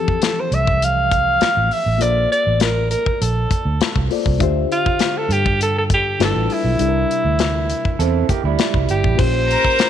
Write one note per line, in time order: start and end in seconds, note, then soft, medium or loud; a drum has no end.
0.00 1.97 E3 medium
0.00 1.96 F3 medium
0.00 1.97 C4 medium
0.00 1.98 G4 medium
0.00 0.41 A4 medium
0.00 1.99 A4 medium
0.08 kick medium
0.22 snare medium
0.22 closed hi-hat medium
0.40 0.56 C5 medium
0.51 1.37 C2 medium
0.51 0.86 E5 medium
0.51 closed hi-hat medium
0.67 kick medium
0.82 1.75 F5 loud
0.82 closed hi-hat medium
1.11 kick medium
1.11 closed hi-hat medium
1.41 muted fingered electric bass stroke soft
1.41 snare medium
1.41 closed hi-hat medium
1.57 1.69 A1 medium
1.71 2.03 E5 medium
1.71 open hi-hat medium
1.86 2.01 A1 medium
1.98 2.25 A#1 loud
1.98 4.05 A#3 medium
1.98 4.05 F4 soft
1.98 4.06 A4 soft
1.98 4.06 C5 soft
1.98 2.31 D5 loud
1.98 closed hi-hat medium
2.02 4.07 D5 medium
2.32 2.63 D5 medium
2.32 closed hi-hat medium
2.47 2.94 A1 medium
2.60 2.90 A#4 medium
2.60 snare medium
2.60 closed hi-hat medium
2.91 3.23 A#4 medium
2.91 closed hi-hat medium
3.06 kick medium
3.21 3.45 A#1 medium
3.21 4.11 A4 medium
3.21 closed hi-hat medium
3.51 kick medium
3.51 closed hi-hat medium
3.65 3.77 D2 medium
3.81 snare loud
3.81 closed hi-hat medium
3.96 4.07 C2 medium
3.96 kick medium
4.10 4.40 A#3 soft
4.10 4.40 F4 soft
4.10 4.41 A4 soft
4.10 4.41 C5 soft
4.10 4.41 D5 medium
4.10 open hi-hat medium
4.26 4.38 C2 medium
4.26 kick medium
4.39 4.64 D2 medium
4.39 6.15 D3 medium
4.39 6.16 D4 medium
4.39 6.17 F4 medium
4.39 6.17 G4 medium
4.39 6.16 E5 medium
4.39 kick medium
4.39 closed hi-hat medium
4.43 6.18 C5 medium
4.72 5.19 F4 medium
4.72 closed hi-hat medium
4.86 kick medium
4.99 snare medium
4.99 closed hi-hat medium
5.17 5.34 A4 medium
5.29 6.15 G2 medium
5.29 5.61 G4 medium
5.29 closed hi-hat medium
5.46 kick medium
5.61 5.75 A4 medium
5.61 closed hi-hat medium
5.78 5.84 A4 medium
5.90 6.20 G4 medium
5.90 kick medium
5.90 closed hi-hat medium
6.19 6.32 G1 medium
6.19 6.77 G3 medium
6.19 6.79 D4 medium
6.19 6.80 E4 medium
6.19 6.80 F4 medium
6.19 6.80 A4 medium
6.19 6.80 B4 medium
6.19 snare loud
6.19 closed hi-hat medium
6.24 6.55 A4 medium
6.35 6.47 A1 medium
6.50 8.60 E4 medium
6.50 open hi-hat medium
6.64 6.76 B1 medium
6.78 7.03 C2 loud
6.78 9.14 C3 medium
6.78 9.14 G3 soft
6.78 9.15 D4 medium
6.78 9.15 E4 soft
6.78 6.87 A4 soft
6.78 closed hi-hat medium
6.88 9.19 A#4 medium
7.11 closed hi-hat medium
7.25 7.72 D2 medium
7.39 snare loud
7.39 closed hi-hat medium
7.70 closed hi-hat medium
7.85 kick medium
7.99 8.23 E2 medium
7.99 8.28 C4 medium
7.99 8.27 A4 medium
7.99 closed hi-hat medium
8.29 8.44 A#3 medium
8.29 8.43 G4 medium
8.29 muted fingered electric bass stroke soft
8.29 kick medium
8.29 closed hi-hat medium
8.44 8.56 D2 medium
8.44 9.16 G3 soft
8.44 9.15 E4 medium
8.59 snare loud
8.59 closed hi-hat medium
8.74 8.86 C2 medium
8.74 kick medium
8.89 9.01 G1 medium
8.89 9.21 G4 medium
8.89 closed hi-hat medium
9.04 9.16 A1 medium
9.04 kick medium
9.16 9.54 A#1 medium
9.16 9.90 A#3 medium
9.16 9.90 F4 soft
9.16 9.90 G4 soft
9.16 9.90 C5 loud
9.16 9.90 C5 medium
9.16 kick loud
9.16 crash medium
9.21 9.90 C#4 medium
9.48 9.90 A#4 medium
9.48 9.90 A#5 medium
9.48 closed hi-hat medium
9.64 kick medium
9.79 snare loud
9.79 closed hi-hat medium